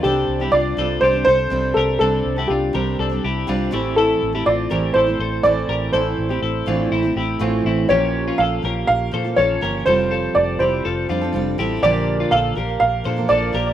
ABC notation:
X:1
M:4/4
L:1/16
Q:1/4=122
K:Bblyd
V:1 name="Upright piano"
G4 d4 c2 c4 A2 | A4 G8- G2 z2 | A4 d4 c4 d4 | c12 z4 |
_d4 f4 f4 d4 | c4 d2 c6 z4 | d4 f4 f4 d4 |]
V:2 name="Clean electric guitar"
[DA]3 [EG] [DF]2 [FA]2 [DG]2 [Ac]4 [GB]2 | [DA]3 [EG] [DF]2 [GB]2 [DA]2 [EG]2 [DF]2 [EG]2 | [EA]3 [EG] [CF]2 [GB]2 [EA]2 [Ac]4 [GB]2 | [EA]3 [EG] [EA]2 [DF]2 [CE]2 [EG]2 [CF]2 [CE]2 |
[_DG]3 [DF] [FA]2 [GB]4 [Ac]2 [FA]2 [GB]2 | [Ac]2 [FA]4 [EG]2 [FA]2 [DF]4 [EG]2 | [DG]3 [DF] [FA]2 [GB]4 [Ac]2 [FA]2 [GB]2 |]
V:3 name="Steel-string acoustic guitar"
[C,G,CD]3 [G,CD]3 [C,G,CD]3 [G,CD]3 [C,G,CD]4 | [C,G,CD]3 [G,CD]3 [C,G,CD]3 [G,CD]3 [C,G,CD]2 [A,,E,A,CE]2- | [A,,E,A,CE]3 [A,CE]3 [A,,E,A,CE]3 [A,CE]3 [A,,E,A,CE]4 | [A,,E,A,CE]3 [A,CE]3 [A,,E,A,CE]3 [A,CE]3 [A,,E,A,CE]4 |
[B,,F,B,_DF]6 [F,B,DF]4 [F,B,DF] [B,DF] [F,B,DF]2 [F,B,DF]2 | [F,G,CFA]6 [G,CFA]4 [G,CFA] [CFA] [G,CFA]2 [G,CFA]2 | [B,,D,F,B,DB]6 [F,B,DB]4 [F,B,DB] [F,B,DB] [F,B,DB]2 [F,B,DB]2 |]
V:4 name="Fingered electric bass" clef=bass
C,,2 C,,2 C,,2 C,,2 C,,2 C,,2 C,,2 C,,2 | C,,2 C,,2 C,,2 C,,2 C,,2 C,,2 C,,2 A,,,2- | A,,,2 A,,,2 A,,,2 A,,,2 A,,,2 A,,,2 A,,,2 A,,,2 | A,,,2 A,,,2 A,,,2 A,,,2 A,,,2 A,,,2 A,,,2 A,,,2 |
B,,,4 B,,,2 B,,,2 B,,,2 B,,2 B,,,2 G,,,2 | F,,,4 F,,,2 F,,,2 F,,,2 F,,2 F,,,2 A,,,2 | B,,,4 B,,,2 B,,,2 B,,,2 B,,2 B,,,2 B,,,2 |]